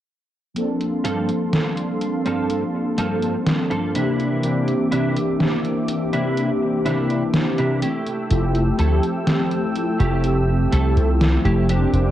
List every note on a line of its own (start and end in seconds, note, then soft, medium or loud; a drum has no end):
0.54 3.88 F3 medium
0.54 3.92 G3 medium
0.54 3.89 A#3 medium
0.54 7.78 A#3 medium
0.54 3.89 C4 medium
0.54 3.89 D4 medium
0.54 3.90 A4 medium
0.54 3.92 F5 medium
0.54 3.92 A5 medium
0.54 3.92 C6 medium
0.54 closed hi-hat medium
0.81 closed hi-hat soft
1.04 1.29 G2 medium
1.04 1.29 A#3 medium
1.04 1.29 C4 medium
1.04 1.29 F4 medium
1.04 1.29 A4 loud
1.04 closed hi-hat medium
1.29 closed hi-hat soft
1.53 muted clean electric guitar stroke soft
1.53 snare loud
1.53 closed hi-hat medium
1.77 closed hi-hat soft
2.01 closed hi-hat medium
2.26 2.62 G2 medium
2.26 2.62 A#3 medium
2.26 2.62 C4 medium
2.26 2.62 F4 medium
2.26 2.62 A4 medium
2.26 closed hi-hat medium
2.50 closed hi-hat medium
2.98 3.34 G2 medium
2.98 3.34 A#3 loud
2.98 3.35 C4 loud
2.98 3.35 F4 medium
2.98 3.35 A4 loud
2.98 closed hi-hat medium
3.22 closed hi-hat soft
3.46 snare loud
3.46 closed hi-hat medium
3.70 3.95 G2 medium
3.70 3.94 A#3 medium
3.70 3.95 C4 medium
3.70 3.94 F4 medium
3.70 3.95 A4 medium
3.70 closed hi-hat soft
3.94 4.72 C3 medium
3.94 4.37 E3 medium
3.94 4.38 A#3 medium
3.94 4.73 A#3 medium
3.94 7.78 C4 medium
3.94 4.38 C4 medium
3.94 4.73 D4 medium
3.94 4.38 D4 medium
3.94 4.73 E4 medium
3.94 4.38 G4 medium
3.94 7.79 E5 medium
3.94 7.78 D6 medium
3.94 closed hi-hat medium
4.20 closed hi-hat soft
4.42 6.79 E3 medium
4.42 6.79 A#3 medium
4.42 6.80 C4 medium
4.42 6.80 D4 medium
4.42 6.81 G4 loud
4.42 closed hi-hat medium
4.68 closed hi-hat soft
4.91 5.16 C3 medium
4.91 5.16 A#3 medium
4.91 5.16 D4 medium
4.91 5.16 E4 loud
4.91 closed hi-hat medium
5.16 closed hi-hat medium
5.40 muted clean electric guitar stroke soft
5.40 snare loud
5.40 closed hi-hat medium
5.65 closed hi-hat soft
5.88 closed hi-hat medium
6.13 6.49 C3 medium
6.13 6.49 A#3 medium
6.13 6.49 D4 medium
6.13 6.50 E4 loud
6.13 closed hi-hat medium
6.37 closed hi-hat medium
6.85 7.22 C3 loud
6.85 7.79 E3 medium
6.85 7.79 A#3 medium
6.85 7.22 A#3 medium
6.85 7.80 C4 medium
6.85 7.22 D4 medium
6.85 7.80 D4 medium
6.85 7.22 E4 loud
6.85 7.80 G4 loud
6.85 snare soft
6.85 closed hi-hat medium
7.10 closed hi-hat medium
7.34 snare loud
7.34 closed hi-hat medium
7.58 7.82 C3 medium
7.58 7.82 A#3 medium
7.58 7.82 D4 medium
7.58 7.81 E4 medium
7.58 closed hi-hat soft
7.82 8.60 A3 medium
7.82 8.60 E4 medium
7.82 8.60 G4 medium
7.82 11.65 A4 medium
7.82 11.66 G5 medium
7.82 11.66 E6 medium
7.82 closed hi-hat medium
8.07 closed hi-hat soft
8.29 8.70 F1 medium
8.29 11.63 F3 medium
8.29 11.63 A3 medium
8.29 11.64 C4 medium
8.29 11.64 E4 medium
8.29 11.64 G4 medium
8.29 closed hi-hat medium
8.55 closed hi-hat soft
8.79 8.99 D2 medium
8.79 9.03 A3 loud
8.79 9.03 E4 medium
8.79 9.03 A4 loud
8.79 closed hi-hat medium
9.03 closed hi-hat soft
9.27 muted clean electric guitar stroke soft
9.27 snare loud
9.27 closed hi-hat medium
9.51 closed hi-hat soft
9.76 closed hi-hat medium
9.99 10.65 F1 medium
9.99 10.36 A3 medium
9.99 10.36 E4 medium
9.99 10.36 G4 medium
9.99 closed hi-hat soft
10.24 closed hi-hat medium
10.72 10.92 C2 medium
10.72 11.09 A3 loud
10.72 11.09 E4 medium
10.72 11.09 A4 loud
10.72 closed hi-hat medium
10.97 11.36 C2 medium
10.97 closed hi-hat medium
11.21 snare loud
11.21 closed hi-hat medium
11.45 11.84 F1 medium
11.45 11.69 A3 medium
11.45 11.69 E4 medium
11.45 11.68 G4 medium
11.45 closed hi-hat soft
11.68 12.11 F3 medium
11.68 12.11 A#3 medium
11.68 12.11 C4 medium
11.68 12.11 D4 medium
11.68 12.11 G4 loud
11.68 12.11 G4 medium
11.68 12.11 C5 medium
11.68 12.11 G5 medium
11.68 12.11 D6 medium
11.68 closed hi-hat medium
11.93 12.11 F1 loud
11.93 closed hi-hat soft